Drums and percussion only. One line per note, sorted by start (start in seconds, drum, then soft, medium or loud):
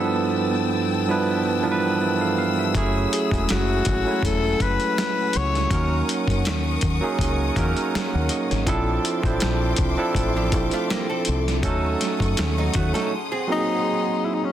2.75 kick loud
2.75 closed hi-hat medium
3.13 closed hi-hat medium
3.31 kick medium
3.31 closed hi-hat soft
3.49 snare loud
3.49 closed hi-hat medium
3.85 kick medium
3.85 closed hi-hat medium
4.23 kick medium
4.23 closed hi-hat medium
4.60 kick medium
4.60 closed hi-hat medium
4.80 closed hi-hat soft
4.98 snare loud
4.98 closed hi-hat medium
5.33 closed hi-hat medium
5.55 snare soft
5.55 closed hi-hat soft
5.71 kick loud
5.71 closed hi-hat medium
6.09 closed hi-hat medium
6.28 kick medium
6.28 closed hi-hat soft
6.45 snare loud
6.45 closed hi-hat medium
6.81 kick medium
6.81 closed hi-hat medium
7.19 kick medium
7.19 closed hi-hat medium
7.56 kick medium
7.56 closed hi-hat medium
7.77 closed hi-hat soft
7.95 snare loud
7.95 closed hi-hat medium
8.29 closed hi-hat medium
8.51 snare soft
8.51 closed hi-hat soft
8.67 kick loud
8.67 closed hi-hat medium
9.05 closed hi-hat medium
9.23 kick medium
9.23 closed hi-hat soft
9.40 snare loud
9.40 closed hi-hat medium
9.76 kick loud
9.76 closed hi-hat medium
10.15 kick medium
10.15 closed hi-hat medium
10.52 kick medium
10.52 closed hi-hat medium
10.71 closed hi-hat soft
10.90 snare loud
10.90 closed hi-hat medium
11.25 closed hi-hat medium
11.48 snare soft
11.48 closed hi-hat soft
11.63 kick loud
11.63 closed hi-hat medium
12.01 snare soft
12.01 closed hi-hat medium
12.20 kick medium
12.20 closed hi-hat soft
12.37 snare loud
12.37 closed hi-hat medium
12.74 kick medium
12.74 closed hi-hat medium
12.95 snare soft
12.95 closed hi-hat soft